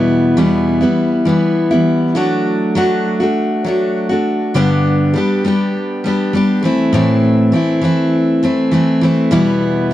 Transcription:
Already playing: E2 B2 E3 G3 B3 E4
0.37 E2 B2 E3 G3 B3 E4
0.81 E3 G3 B3 E4
1.25 E3 G3 B3 E4
1.71 E3 G3 B3 E4
2.15 F#3 A3 D4 F#4
2.75 F#3 A3 D4 F#4
3.20 A3 D4 F#4
3.64 F#3 A3 D4 F#4
4.09 A3 D4 F#4
4.54 G2 D3 G3 B3 D4 G4
5.14 G3 B3 D4 G4
5.44 G3 B3 D4 G4
6.04 G3 B3 D4 G4
6.33 G3 B3 D4 G4
6.63 E3 A3 C4 E4
6.93 A2 E3 A3 C4 E4
7.52 E3 A3 C4 E4
7.81 E3 A3 C4 E4
8.43 E3 A3 C4 E4
8.71 E3 A3 C4 E4
9.01 E3 A3 C4
9.05 E4
9.31 E2 B2 E3 G3 B3 E4

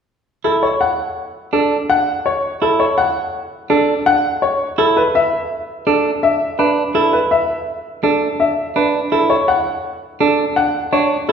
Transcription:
0.44 E4 A4
0.63 C#5
0.81 F#5
1.53 D4 A4
1.90 F#5
2.26 C#5
2.62 E4 A4
2.80 C#5
2.98 F#5
3.70 D4 A4
4.06 F#5
4.42 C#5
4.78 E4 A4
4.97 B4
5.15 E5
5.87 D4 A4
6.23 E5
6.59 D4 B4
6.95 E4 A4
7.13 B4
7.31 E5
8.03 D4 A4
8.40 E5
8.76 D4 B4
9.12 E4 A4
9.30 C#5
9.48 F#5
10.20 D4 A4
10.56 F#5
10.92 D4 C#5
11.29 A4

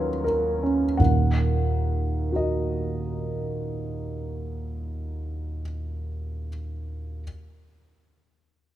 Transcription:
Already playing: D#2 F#3 C#4 F4 A#4 B4 C#5
0.24 A#4
0.63 C#4
0.97 D#2 A#2 F#5
2.32 F#4 A#4 D#5

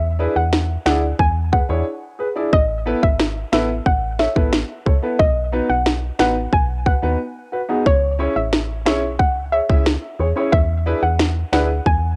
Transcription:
Already playing: E2
0.19 D4 E4 G#4 B4
0.36 E2 F#5
0.53 snare
0.86 D2 D4 E4 G#4 D5 F#5, snare
1.19 E2 G#5, kick
1.52 G#4 B4 F#5, kick
1.69 E2 D4 E4 G#4 C#5
2.19 G#4 B4
2.36 D4 E4 G#4 D5
2.53 A1 D#5, kick
2.86 B3 E4 A4 B4
3.03 G#1 E5, kick
3.19 cross-stick, snare
3.52 A1 B3 E4 A4 B4 E5, snare
3.86 A1 F#5, kick
4.19 A4 C#5 E5, snare
4.36 A1 B3 E4 A4 B4, kick
4.53 snare
4.86 C#2 A4 C#5, kick
5.02 B3 E4 A4 B4
5.19 B1 D#5, kick
5.52 B3 D#4 F#4 B4
5.70 B1 F#5
5.86 snare
6.19 A1 B3 D#4 F#4 B4 F#5, snare
6.53 B1 G#5, kick
6.86 F#4 B4 F#5, kick
7.02 D#2 B3 D#4 F#4 B4
7.52 F#4 B4
7.69 B3 D#4 F#4 G#4
7.86 C#2 C#5, kick
8.19 C#4 E4 G#4 C#5
8.36 A1 E5
8.53 snare
8.85 B1 C#4 E4 G#4 C#5 E5, snare
9.19 C#2 F#5, kick
9.52 G#4 C#5 E5
9.69 C#2 C#4 E4 G#4 E5, kick
9.86 snare
10.19 E2 G#4 C#5
10.36 C#4 E4 G#4 C#5
10.52 E2 E5, kick
10.86 D4 E4 G#4 B4
11.03 E2 F#5
11.19 snare
11.52 D2 D4 E4 G#4 B4 F#5, snare
11.86 E2 G#5, kick

